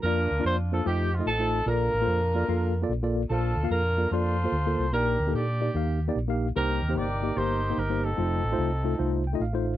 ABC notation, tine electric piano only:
X:1
M:4/4
L:1/16
Q:"Swing" 1/4=147
K:Bb
V:1 name="Tine electric piano"
[B,DFd]2 z [B,DFd]2 z [B,DFc] z [A,EFc]2 z [A,EFe] z [A,EFc]2 z | [B,FAd]2 z [B,FAc]2 z [B,FAd] z [B,FAf]2 z [B,FAd] z [B,FAd]2 z | [B,FAc]2 z [B,FAf]2 z [B,FAd] z [B,FAd]2 z [B,FAc] z [B,FAc]2 z | [B,EGd]2 z [B,EGA]2 z [B,EGd] z [B,EGf]2 z [B,EGd] z [B,EGf]2 z |
[B,EGc]2 z [B,EGc]2 z [B,EGe] z [B,EGc]2 z [B,EGc] z [B,EGc]2 z | [A,EFc]2 z [A,EFc]2 z [A,EFA] z [A,EFc]2 z [A,EFe] z [A,EFc]2 z |]
V:2 name="Tine electric piano" clef=bass
z16 | B,,6 z8 z2 | B,,6 z8 z2 | B,,6 z8 z2 |
C,6 z8 z2 | z8 z2 g2 f4 |]